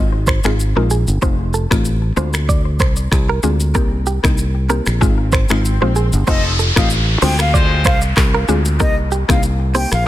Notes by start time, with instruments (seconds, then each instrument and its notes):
Already playing: fingered electric bass G#1, synth pluck G#3 C4 D#4 F4
0.27 clean electric guitar C5, finger snap, kick, cross-stick, shaker
0.44 fingered electric bass G#1, synth pluck G#3 C4 D#4 F4, clean electric guitar G#4, finger snap, cross-stick, shaker
0.60 shaker
0.76 fingered electric bass A#1, synth pluck G#3 C4 D#4 F4, clean electric guitar A#4
0.90 clean electric guitar G#4, shaker
1.08 fingered electric bass G1, shaker
1.22 fingered electric bass F1, synth pluck A3 C4 D#4 F4, clean electric guitar C5, kick, swell, shaker
1.54 clean electric guitar A4, shaker
1.71 fingered electric bass A1, synth pluck A3 C4 D#4 F4, finger snap, kick, cross-stick, shaker
1.85 shaker
2.16 fingered electric bass D2, synth pluck G#3 C4 D4 F4, clean electric guitar C5, shaker
2.34 finger snap, cross-stick, shaker
2.49 clean electric guitar D5, kick, shaker
2.79 fingered electric bass C2, clean electric guitar C5, finger snap, kick, cross-stick, shaker
2.96 shaker
3.12 fingered electric bass C2, finger snap, kick, cross-stick, shaker
3.29 clean electric guitar A#4
3.43 fingered electric bass D2, synth pluck G#3 C4 D4 F4, clean electric guitar G#4, shaker
3.60 shaker
3.75 fingered electric bass C2, synth pluck A#3 C4 D#4 G4, clean electric guitar A#4, kick, shaker
4.06 clean electric guitar G4, shaker
4.24 fingered electric bass C2, synth pluck A#3 C4 D#4 G4, finger snap, kick, cross-stick, shaker
4.38 shaker
4.69 synth pluck A#3 C4 D#4 G4, clean electric guitar A#4, shaker
4.86 fingered electric bass A#1, finger snap, cross-stick, shaker
5.01 fingered electric bass G#1, synth pluck G#3 C4 D#4 F4, clean electric guitar G#4, kick, shaker
5.32 clean electric guitar C5, finger snap, kick, cross-stick, shaker
5.49 fingered electric bass G#1, synth pluck G#3 C4 D#4 F4, clean electric guitar A#4, finger snap, cross-stick, shaker
5.65 shaker
5.81 fingered electric bass A#1, synth pluck G#3 C4 D#4 F4, clean electric guitar C5
5.96 clean electric guitar G#4, shaker
6.13 fingered electric bass G1, shaker
6.27 fingered electric bass F1, horn section F3 D#4 A4, synth pluck A3 C4 D#4 F4, clean electric guitar C5, flute D#5, kick, downlifter, shaker
6.59 clean electric guitar A4, shaker
6.76 fingered electric bass A1, horn section G3 D#4 G4, synth pluck A3 C4 D#4 F4, flute F5, finger snap, kick, cross-stick, shaker
6.90 shaker
7.22 fingered electric bass D2, horn section F3 D4 G#4, synth pluck G#3 C4 D4 F4, clean electric guitar C5, flute G5, open hi-hat, shaker
7.39 flute F5, finger snap, cross-stick, shaker
7.54 horn section G#3 F4 C5, clean electric guitar D5, kick, shaker
7.85 fingered electric bass C2, clean electric guitar C5, flute F5, finger snap, kick, cross-stick, shaker
8.01 shaker
8.17 fingered electric bass C2, finger snap, kick, cross-stick, clap, shaker
8.34 clean electric guitar A#4
8.48 fingered electric bass D2, synth pluck G#3 C4 D4 F4, clean electric guitar G#4, shaker
8.65 shaker
8.80 fingered electric bass C2, synth pluck A#3 C4 D#4 G4, clean electric guitar A#4, flute D#5, kick, shaker
9.12 clean electric guitar G4, shaker
9.29 fingered electric bass C2, synth pluck A#3 C4 D#4 G4, flute F5, finger snap, kick, cross-stick, shaker
9.43 shaker
9.75 synth pluck A#3 C4 D#4 G4, clean electric guitar C5, flute G5, open hi-hat, shaker
9.91 fingered electric bass A#1, flute F5, finger snap, cross-stick, shaker